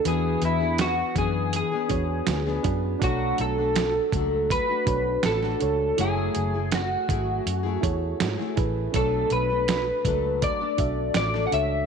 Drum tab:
HH |x-x-x-x-x-x-x-x-|x-x-x-x-x-x-x-x-|x-x-x-x-x-x-x-x-|x-x-x-x-x-x-x-x-|
SD |----o-------oo--|----o-------oo--|----o-------oo--|----o-------oo--|
BD |------o---o---o-|o-----o-o-o-----|------o---o---o-|o-----o-o-o-----|